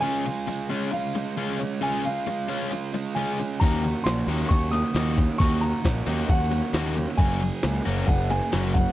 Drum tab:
HH |--------|--------|xxxxxxxx|xxxxxxxx|
TB |--------|--------|--x---x-|--x---x-|
SD |--------|--------|--o---o-|--o---o-|
BD |--------|--------|o---o--o|o-o-o---|

HH |xxxxxxxx|
TB |--x---x-|
SD |--o---o-|
BD |o---o--o|